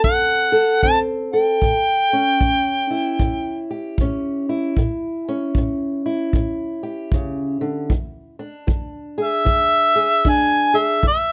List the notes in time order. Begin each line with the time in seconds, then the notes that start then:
Already playing: C4 A4
0.04 D3 F#5, kick
0.52 A4
0.83 D3 C4 A5, kick
1.33 A4 G5
1.62 A2, kick
2.13 C#4
2.41 A2, kick
2.91 E4
3.20 A2, kick
3.71 G4
3.98 A2 C#4, kick
4.49 E4
4.77 A2, kick
5.28 C#4
5.55 A2, kick
6.06 E4
6.33 A2, kick
6.83 G4
7.12 C#3, kick
7.61 D3
7.90 E3, kick
8.39 D4
8.67 E3, kick
9.18 G#4
9.23 E5
9.45 E3, kick
9.96 G#4
10.25 E3 D4, kick
10.29 G#5
10.74 G#4 E5
11.03 E3, kick
11.08 E5